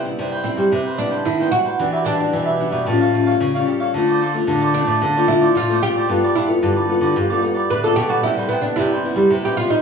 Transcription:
Already playing: nylon-string guitar C3
0.04 nylon-string guitar G3 B3 E4, muted cavaquinho stroke
0.18 nylon-string guitar G2 C3, cavaquinho E4 B4 C5 G5
0.32 cavaquinho B4 C5 G5
0.44 nylon-string guitar G3 E4, oud C4
0.57 nylon-string guitar G3, cavaquinho B4 C5 G5
0.71 nylon-string guitar C3, cavaquinho E4 B4 C5 G5
0.86 cavaquinho B4 C5 G5
0.98 nylon-string guitar G3 B3 E4, oud D4, muted cavaquinho stroke
1.10 cavaquinho B4 C5 G5
1.25 nylon-string guitar G2 D#3, oud E4
1.40 nylon-string guitar G3 B3 E4, cavaquinho B4 C5 G5
1.51 nylon-string guitar G3 B3 E4, cavaquinho E4 B4 C5 G5, oud F#4
1.64 cavaquinho B4 C5 G5
1.79 nylon-string guitar E3 G3 D4 F#4, cavaquinho D4 G4 B4 E5
1.93 cavaquinho G4 B4 E5
2.04 cavaquinho D4 G4 B4 E5, oud D4
2.18 nylon-string guitar G3 D4 F#4, muted cavaquinho stroke
2.32 nylon-string guitar B2 E3, cavaquinho D4 G4 B4 E5
2.46 cavaquinho G4 B4 E5
2.60 nylon-string guitar G3 D4 F#4
2.71 nylon-string guitar B2, cavaquinho G4 B4 E5
2.85 nylon-string guitar A2 G3 C#4 F4, cavaquinho G4 A4 C#5 F5
3.01 cavaquinho A4 C#5 F5
3.14 nylon-string guitar G3 C#4 F4, muted cavaquinho stroke
3.26 cavaquinho A4 C#5 F5
3.40 nylon-string guitar A2 C#3
3.55 nylon-string guitar G3 C#4 F4, cavaquinho A4 C#5 F5
3.67 cavaquinho G4 A4 C#5 F5
3.80 cavaquinho A4 C#5 F5
3.94 nylon-string guitar D3 A3 C4 F4, cavaquinho F4 A4 C5 D5
4.09 cavaquinho A4 C5 D5
4.21 cavaquinho F4 A4 C5 D5
4.34 nylon-string guitar A3 C4 F4, muted cavaquinho stroke
4.47 nylon-string guitar A2 D3, cavaquinho F4 A4 C5 D5
4.62 cavaquinho A4 C5 D5
4.74 nylon-string guitar A3 C4 F4, oud D4
4.87 nylon-string guitar A2, cavaquinho A4 C5 D5
5.01 nylon-string guitar D3, cavaquinho F4 A4 C5 D5
5.16 nylon-string guitar A3 C4 F4, cavaquinho A4 C5 D5
5.28 nylon-string guitar A3 C4 F4, oud E4
5.41 cavaquinho A4 C5 D5
5.55 nylon-string guitar A2, oud F4
5.69 nylon-string guitar A3 C4 F4, cavaquinho A4 C5 D5
5.81 nylon-string guitar A3 C4 F4, cavaquinho F4 A4 C5 D5, oud G4
5.96 cavaquinho A4 C5 D5
6.09 nylon-string guitar G2 G3 B3 F4 A4, cavaquinho F4 G4 B4 D5
6.24 cavaquinho G4 B4 D5
6.35 oud E4, cavaquinho F4 G4 B4 D5
6.47 nylon-string guitar B3 F4 A4, muted cavaquinho stroke
6.62 nylon-string guitar G2 D3, cavaquinho F4 G4 B4 D5
6.77 cavaquinho G4 B4 D5
6.89 nylon-string guitar B3 F4 A4
7.01 nylon-string guitar D3, cavaquinho G4 B4 D5
7.16 nylon-string guitar G2 G3, cavaquinho F4 G4 B4 D5
7.30 nylon-string guitar B3 F4 A4, cavaquinho G4 B4 D5
7.42 nylon-string guitar B3 F4 A4, muted cavaquinho stroke
7.54 cavaquinho G4 B4 D5
7.70 nylon-string guitar A2 D3, oud B4
7.83 nylon-string guitar B3 F4 A4, cavaquinho G4 B4 D5, oud A4
7.95 nylon-string guitar B2 B3 F4 A4, cavaquinho F4 G4 B4 D5, oud G4
8.08 oud F#4, cavaquinho G4 B4 D5
8.23 nylon-string guitar C3 G3 B3 E4, oud E4, cavaquinho E4 B4 C5 G5
8.37 oud G3, cavaquinho B4 C5 G5
8.49 oud B3, cavaquinho E4 B4 C5 G5
8.62 nylon-string guitar G3 B3 E4, oud D4, muted cavaquinho stroke
8.76 nylon-string guitar G2 C3, oud E4, cavaquinho E4 B4 C5 G5
8.92 cavaquinho B4 C5 G5
9.04 nylon-string guitar G3 B3 E4
9.16 nylon-string guitar G3, cavaquinho B4 C5 G5
9.30 nylon-string guitar C3, cavaquinho E4 B4 C5 G5
9.44 nylon-string guitar G3 B3 E4, oud G4, cavaquinho B4 C5 G5
9.57 nylon-string guitar G3 B3 E4, oud F4, muted cavaquinho stroke
9.69 oud D#4, cavaquinho B4 C5 G5

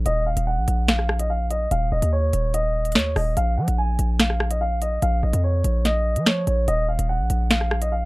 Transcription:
0.06 808-style bass D#1, grand piano D#5, closed hi-hat
0.26 grand piano F5
0.37 808-style bass D#1, closed hi-hat
0.47 grand piano F#5
0.57 808-style bass A#1
0.68 808-style bass A#1, closed hi-hat
0.88 grand piano F5, finger snap, snare, closed hi-hat
0.99 cross-stick
1.09 cross-stick
1.19 grand piano D#5, closed hi-hat
1.30 grand piano F5
1.50 grand piano D#5, closed hi-hat
1.71 808-style bass D#1, grand piano F5, closed hi-hat
1.92 808-style bass D#1, grand piano D#5
2.02 808-style bass D#2, closed hi-hat
2.13 grand piano C#5
2.33 808-style bass D#1, closed hi-hat
2.54 grand piano D#5, closed hi-hat
2.85 closed hi-hat
2.92 808-style bass D#2, grand piano C#5, finger snap, snare, closed hi-hat
2.99 closed hi-hat
3.16 808-style bass D#1, grand piano D#5, cross-stick, open hi-hat
3.37 808-style bass A#1, grand piano F5, closed hi-hat
3.58 808-style bass F3, grand piano F#5
3.68 808-style bass A#1, closed hi-hat
3.78 grand piano G#5
3.99 808-style bass A#1, closed hi-hat
4.20 grand piano F5, finger snap, snare, closed hi-hat
4.30 cross-stick
4.40 cross-stick
4.51 grand piano D#5, closed hi-hat
4.61 grand piano F5
4.82 grand piano D#5, closed hi-hat
5.02 808-style bass A#1, grand piano F5, closed hi-hat
5.23 808-style bass A#1, grand piano D#5
5.33 808-style bass F2, closed hi-hat
5.44 grand piano C#5
5.64 808-style bass A#1, closed hi-hat
5.85 grand piano D#5, snare, closed hi-hat
6.16 808-style bass F3, closed hi-hat
6.26 grand piano C#5, finger snap, snare
6.47 808-style bass A#1, grand piano C#5, closed hi-hat
6.68 808-style bass D#1, grand piano D#5, closed hi-hat
6.88 grand piano F5
6.99 808-style bass D#1, closed hi-hat
7.09 grand piano F#5
7.20 808-style bass A#1
7.30 808-style bass A#1, closed hi-hat
7.51 grand piano F5, finger snap, snare, closed hi-hat
7.61 cross-stick
7.71 cross-stick
7.82 grand piano D#5, closed hi-hat
7.92 grand piano F5

